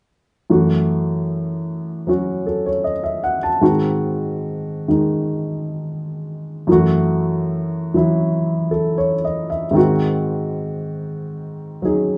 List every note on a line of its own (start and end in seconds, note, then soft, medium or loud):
0.50 3.61 F#2 soft
0.50 3.61 E3 soft
0.50 3.62 A3 soft
0.50 2.08 F#4 soft
2.07 3.62 F#3 soft
2.07 3.62 C#4 soft
2.07 3.61 F#4 soft
2.47 2.69 A4 soft
2.66 2.92 C#5 soft
2.84 3.21 D#5 soft
3.04 3.37 E5 soft
3.24 3.46 F#5 soft
3.43 3.69 A5 soft
3.61 6.68 G#2 soft
3.61 4.87 D#3 soft
3.61 6.69 C4 soft
3.61 6.69 F#4 soft
4.88 6.68 D#3 soft
4.88 6.68 G#3 soft
4.88 6.69 D#4 soft
6.67 9.76 F#2 soft
6.67 7.93 E3 soft
6.67 9.77 A3 soft
6.72 9.75 F#4 medium
7.94 9.75 E3 soft
7.94 9.76 F#3 soft
7.94 9.76 E4 soft
8.71 9.12 A4 soft
8.98 9.48 C#5 soft
9.25 9.65 D#5 soft
9.50 9.91 E5 soft
9.71 12.18 G#2 soft
9.71 12.18 D#3 soft
9.71 12.18 C4 soft
9.76 12.18 F#4 soft
11.82 12.18 F#3 soft
11.82 12.18 D#4 soft
11.82 12.18 G#4 soft